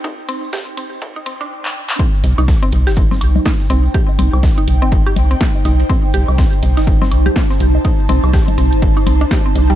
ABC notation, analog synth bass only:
X:1
M:4/4
L:1/16
Q:"Swing 16ths" 1/4=123
K:Cdor
V:1 name="Analog synth bass" clef=bass
z16 | z2 C,, C,, z2 C,, G,,,3 C,, z3 C,, z | z2 C,, C,, z2 C,, G,,,3 C,, z3 C,, z | z2 C,, C,, z2 C,, G,,,3 C,, z3 C,, z |
z2 C,, C,, z2 C,, G,,,3 C,, z3 C,, z |]